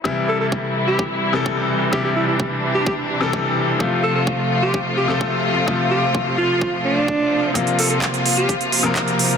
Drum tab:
HH |----------------|----------------|----------------|----------------|
CP |----------------|----------------|----------------|----------------|
BD |o---o---o---o---|o---o---o---o---|o---o---o---o---|o---o---o---o---|

HH |xxoxxxoxxxo-xxox|
CP |----x-------x---|
BD |o---o---o---o---|